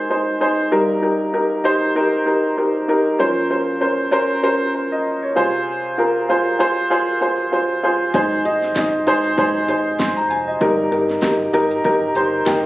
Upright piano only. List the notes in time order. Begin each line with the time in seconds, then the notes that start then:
Already playing: G#2 D#3 D#4 G#4 A#4 C5
0.10 D#4 G#4 C5
0.40 D#4 G#4 C5
0.71 G2 G3 D#4 G4 A#4
1.02 D#4 G4 A#4
1.33 D#4 G4 A#4
1.64 D#4 G4 C5
1.95 D#4 G4 A#4
2.26 D#4 G4 A#4
2.57 D#4 G4 A#4
2.88 D#4 G4 A#4
3.19 A#2 F3 C#4 A#4 C5
3.50 C#4 A#4 C5
3.81 C#4 A#4 C5
4.11 C#4 A#4 C5
4.43 C#4 A#4 C5
4.74 C5
4.92 D#5
5.22 C#5
5.36 C3 F4 G#4 C5
5.98 F4 G#4 A#4
6.29 F4 G#4 C5
6.59 F4 G#4 C5
6.90 F4 G#4 C5
7.21 F4 G#4 C5
7.52 F4 G#4 C5
7.83 F4 G#4 C5
8.14 G#2 D#3 D#4 G#4 C5
8.45 D#4 G#4 D#5
8.76 D#4 G#4 D#5
9.07 D#4 G#4 C5
9.37 D#4 G#4 C5
9.68 D#4 G#4 C5
9.99 C6
10.17 A#5
10.30 G#5
10.47 D#5
10.60 G2 G3 D#4 G4 A#4
10.91 D#4 G4 A#4
11.22 D#4 G4 A#4
11.53 D#4 G4 A#4
11.84 D#4 G4 A#4
12.15 D#4 G4 C5
12.46 D#4 G4 A#4 G5